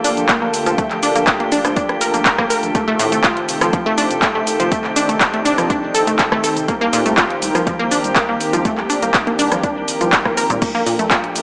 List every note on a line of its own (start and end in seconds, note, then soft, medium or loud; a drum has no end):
0.00 2.71 D3 medium
0.00 2.71 A3 medium
0.00 2.71 A#3 medium
0.00 4.68 F4 medium
0.00 10.61 G4 medium
0.00 6.64 A4 medium
0.00 10.61 G5 medium
0.04 0.08 D4 medium
0.04 open hi-hat loud
0.04 shaker medium
0.17 0.25 A#1 medium
0.17 closed hi-hat medium
0.17 shaker soft
0.29 0.33 A#3 medium
0.29 kick loud
0.29 clap loud
0.29 closed hi-hat medium
0.29 shaker soft
0.42 0.50 A#1 medium
0.42 0.48 A#3 medium
0.54 open hi-hat loud
0.54 shaker medium
0.66 0.74 A#1 medium
0.66 0.73 F3 medium
0.66 closed hi-hat soft
0.66 shaker soft
0.78 0.85 A3 medium
0.78 kick loud
0.78 closed hi-hat medium
0.78 shaker soft
0.91 0.99 A#1 medium
0.91 clap soft
0.91 closed hi-hat soft
1.03 1.07 D4 medium
1.03 open hi-hat loud
1.03 shaker medium
1.16 1.23 A#1 medium
1.16 1.19 A#3 medium
1.16 closed hi-hat medium
1.16 shaker soft
1.27 kick loud
1.27 clap loud
1.27 closed hi-hat medium
1.27 shaker soft
1.40 1.46 A#3 medium
1.40 closed hi-hat soft
1.52 1.60 A#1 medium
1.52 1.59 D4 loud
1.52 open hi-hat loud
1.52 shaker medium
1.65 1.73 A#1 medium
1.65 1.71 F3 medium
1.65 cross-stick medium
1.65 closed hi-hat medium
1.65 shaker soft
1.76 1.83 D4 medium
1.76 kick loud
1.76 closed hi-hat medium
1.76 shaker soft
1.89 1.97 A#1 medium
1.89 cross-stick medium
1.89 closed hi-hat soft
2.01 2.11 A#4 medium
2.01 open hi-hat loud
2.01 shaker medium
2.14 2.22 A#1 medium
2.14 2.18 A#3 medium
2.14 closed hi-hat medium
2.14 shaker soft
2.25 2.30 A#4 loud
2.25 kick loud
2.25 clap loud
2.25 closed hi-hat medium
2.25 shaker soft
2.38 2.46 A#1 medium
2.38 2.42 A#3 loud
2.38 kick medium
2.38 cross-stick medium
2.50 2.57 A#4 medium
2.50 open hi-hat loud
2.50 shaker medium
2.63 2.71 A#1 medium
2.63 closed hi-hat soft
2.63 shaker soft
2.75 10.58 D#3 medium
2.75 2.82 A3 medium
2.75 6.64 A3 medium
2.75 10.58 C4 medium
2.75 kick loud
2.75 closed hi-hat medium
2.75 shaker soft
2.88 2.96 F1 medium
2.88 2.94 A3 loud
2.99 3.06 A2 loud
2.99 open hi-hat loud
2.99 shaker medium
3.12 3.20 F1 medium
3.12 3.18 A3 medium
3.12 closed hi-hat medium
3.12 shaker soft
3.24 3.34 F4 medium
3.24 kick loud
3.24 clap loud
3.24 closed hi-hat medium
3.24 shaker soft
3.37 closed hi-hat soft
3.49 3.57 F1 loud
3.49 open hi-hat loud
3.49 shaker medium
3.61 3.69 F1 medium
3.61 3.68 F3 medium
3.61 cross-stick medium
3.61 closed hi-hat medium
3.61 shaker soft
3.73 3.80 F3 medium
3.73 kick loud
3.73 closed hi-hat medium
3.73 shaker soft
3.86 3.94 F1 medium
3.86 3.92 A3 loud
3.98 4.02 D4 medium
3.98 open hi-hat loud
3.98 shaker medium
4.11 4.18 F1 medium
4.11 closed hi-hat medium
4.11 shaker soft
4.22 4.26 A3 medium
4.22 kick loud
4.22 clap loud
4.22 closed hi-hat medium
4.22 shaker soft
4.35 4.43 F1 medium
4.35 4.41 A3 medium
4.47 open hi-hat loud
4.47 shaker medium
4.60 4.68 F1 medium
4.60 4.66 F3 medium
4.60 closed hi-hat medium
4.60 shaker soft
4.72 4.78 A3 medium
4.72 6.66 D#4 medium
4.72 kick loud
4.72 closed hi-hat medium
4.72 shaker soft
4.84 4.92 F1 medium
4.84 clap soft
4.96 5.00 D4 medium
4.96 open hi-hat loud
4.96 shaker medium
5.09 5.17 F1 medium
5.09 5.13 A3 medium
5.09 closed hi-hat medium
5.09 shaker soft
5.21 kick loud
5.21 clap loud
5.21 closed hi-hat medium
5.21 shaker soft
5.34 5.40 A3 medium
5.34 closed hi-hat soft
5.45 5.54 F1 loud
5.45 5.52 D4 loud
5.45 open hi-hat loud
5.45 shaker medium
5.58 5.66 F1 medium
5.58 5.64 F3 medium
5.58 cross-stick medium
5.58 closed hi-hat medium
5.58 shaker soft
5.70 5.77 D4 medium
5.70 kick loud
5.70 closed hi-hat medium
5.70 shaker soft
5.83 5.91 F1 medium
5.95 6.05 A4 medium
5.95 open hi-hat loud
5.95 shaker medium
6.07 6.15 F1 medium
6.07 6.11 A3 medium
6.07 closed hi-hat medium
6.07 shaker soft
6.19 6.23 A4 loud
6.19 kick loud
6.19 clap loud
6.19 closed hi-hat medium
6.19 shaker soft
6.32 6.40 F1 medium
6.32 6.36 A3 loud
6.32 kick medium
6.32 cross-stick medium
6.44 6.50 A4 medium
6.44 open hi-hat loud
6.44 shaker medium
6.57 6.64 F1 medium
6.57 closed hi-hat medium
6.57 shaker soft
6.68 11.42 A#3 medium
6.68 6.75 A#3 medium
6.68 10.58 G4 medium
6.68 11.42 A#4 medium
6.68 kick loud
6.68 closed hi-hat medium
6.68 shaker soft
6.81 6.89 C2 medium
6.81 6.87 A#3 loud
6.93 7.00 A#2 loud
6.93 open hi-hat loud
6.93 shaker medium
7.06 7.14 C2 medium
7.06 7.12 A3 medium
7.06 closed hi-hat medium
7.06 shaker soft
7.17 7.27 F4 medium
7.17 kick loud
7.17 clap loud
7.17 closed hi-hat medium
7.17 shaker soft
7.30 closed hi-hat soft
7.42 7.51 C2 loud
7.42 open hi-hat loud
7.42 shaker medium
7.55 7.63 C2 medium
7.55 7.61 F3 medium
7.55 cross-stick medium
7.55 closed hi-hat medium
7.55 shaker medium
7.67 7.73 F3 medium
7.67 kick loud
7.67 closed hi-hat medium
7.67 shaker soft
7.79 7.87 C2 medium
7.79 7.86 A#3 loud
7.91 7.95 D4 medium
7.91 open hi-hat loud
7.91 shaker medium
8.04 8.12 C2 medium
8.04 closed hi-hat medium
8.04 shaker soft
8.16 8.20 A#3 medium
8.16 kick loud
8.16 clap loud
8.16 closed hi-hat medium
8.16 shaker soft
8.29 8.37 C2 medium
8.29 8.35 A#3 medium
8.41 open hi-hat loud
8.41 shaker medium
8.53 8.61 C2 medium
8.53 8.59 F3 medium
8.53 closed hi-hat medium
8.53 shaker soft
8.65 8.72 A3 medium
8.65 kick loud
8.65 closed hi-hat medium
8.65 shaker soft
8.78 8.86 C2 medium
8.78 clap soft
8.90 8.94 D4 medium
8.90 open hi-hat loud
8.90 shaker medium
9.02 9.10 C2 medium
9.02 9.06 A#3 medium
9.02 closed hi-hat medium
9.02 shaker soft
9.14 kick loud
9.14 clap loud
9.14 closed hi-hat medium
9.14 shaker soft
9.27 9.33 A#3 medium
9.27 closed hi-hat soft
9.39 9.47 C2 medium
9.39 9.46 D4 loud
9.39 open hi-hat loud
9.39 shaker medium
9.52 9.59 C2 medium
9.52 9.58 F3 medium
9.52 cross-stick medium
9.52 closed hi-hat medium
9.52 shaker soft
9.63 9.70 D4 medium
9.63 kick loud
9.63 closed hi-hat medium
9.63 shaker soft
9.76 9.84 C2 medium
9.88 open hi-hat loud
9.88 shaker medium
10.01 10.09 C2 medium
10.01 10.07 F3 medium
10.01 closed hi-hat medium
10.01 shaker soft
10.12 kick loud
10.12 clap loud
10.12 closed hi-hat medium
10.12 shaker soft
10.25 10.33 C2 medium
10.25 10.29 A#3 medium
10.25 kick medium
10.25 cross-stick medium
10.37 10.47 A#4 medium
10.37 open hi-hat loud
10.37 shaker medium
10.50 10.58 C2 medium
10.50 10.56 A#2 loud
10.50 closed hi-hat medium
10.50 shaker soft
10.62 11.42 F3 medium
10.62 10.68 A#3 medium
10.62 11.42 D4 medium
10.62 11.42 G4 medium
10.62 11.42 A4 medium
10.62 11.42 G5 medium
10.62 kick loud
10.62 closed hi-hat medium
10.62 crash medium
10.62 shaker soft
10.75 10.82 A#1 medium
10.75 10.81 A#3 loud
10.86 10.93 A#2 loud
10.86 open hi-hat loud
10.86 shaker medium
10.99 11.07 A#1 medium
10.99 11.05 A3 medium
10.99 closed hi-hat medium
10.99 shaker soft
11.11 11.21 F4 medium
11.11 kick loud
11.11 clap loud
11.11 closed hi-hat medium
11.11 shaker soft
11.24 closed hi-hat soft
11.36 11.42 A#1 medium
11.36 open hi-hat loud
11.36 shaker medium